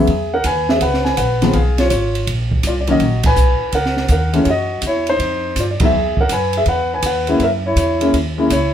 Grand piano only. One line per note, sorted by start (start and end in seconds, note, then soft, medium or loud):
0.00 0.32 G#4 medium
0.00 0.35 E5 medium
0.34 0.45 A#4 medium
0.34 0.44 F#5 loud
0.46 0.68 B4 medium
0.46 0.70 G#5 loud
0.70 0.81 G#4 medium
0.70 0.82 E5 medium
0.82 1.04 B4 medium
0.82 1.04 F#5 medium
1.05 1.17 B4 medium
1.05 1.18 G#5 medium
1.17 1.52 B4 medium
1.17 1.55 F#5 medium
1.43 1.53 D#3 medium
1.43 1.53 F3 medium
1.43 1.54 G#3 medium
1.43 1.54 B3 medium
1.54 1.78 G#4 medium
1.54 1.79 F5 medium
1.79 1.90 F4 medium
1.79 1.88 C#5 medium
1.89 2.25 F4 medium
1.89 2.24 C#5 medium
2.67 2.73 F4 medium
2.67 2.72 D5 medium
2.81 2.89 D5 medium
2.88 2.99 D#3 medium
2.88 3.00 F#3 medium
2.88 3.00 A#3 medium
2.88 3.00 C#4 medium
2.88 3.24 D#5 medium
2.92 3.25 F#4 medium
3.26 3.72 B4 medium
3.26 3.76 G#5 loud
3.75 4.09 A#4 medium
3.75 4.10 F#5 medium
4.12 4.41 A#4 medium
4.12 4.44 F#5 medium
4.33 4.45 E3 medium
4.33 4.46 G#3 medium
4.33 4.46 A3 medium
4.33 4.46 C#4 medium
4.43 4.48 C#5 medium
4.49 4.83 F#4 medium
4.49 4.83 D#5 medium
4.86 5.08 E4 medium
4.86 5.11 C#5 medium
5.09 5.55 D#4 medium
5.09 5.60 C5 medium
5.59 5.64 F4 medium
5.59 5.65 D5 medium
5.71 5.81 D5 medium
5.81 5.92 F#3 medium
5.81 5.92 G#3 medium
5.81 5.93 B3 medium
5.81 5.93 D#4 medium
5.81 6.17 G#4 medium
5.85 6.21 E5 medium
6.21 6.31 A#4 medium
6.21 6.31 F#5 medium
6.32 6.54 B4 medium
6.32 6.57 G#5 medium
6.57 6.62 G#4 medium
6.57 6.62 E5 medium
6.68 6.91 B4 medium
6.68 6.91 F#5 medium
6.94 7.04 B4 medium
6.94 7.06 G#5 medium
7.06 7.39 B4 medium
7.06 7.43 F#5 medium
7.28 7.40 G#3 medium
7.28 7.40 A#3 medium
7.28 7.40 C#4 medium
7.28 7.40 E4 medium
7.43 7.49 A#4 medium
7.43 7.48 E5 medium
7.66 7.78 E4 medium
7.66 7.76 C#5 medium
7.77 8.01 E4 medium
7.77 8.12 C#5 medium
8.01 8.13 G#3 medium
8.01 8.13 A#3 medium
8.01 8.13 C#4 medium
8.01 8.13 E4 medium
8.38 8.50 G#3 medium
8.38 8.50 A#3 medium
8.38 8.50 C#4 medium
8.38 8.50 E4 medium
8.52 8.74 E4 medium
8.52 8.74 C#5 medium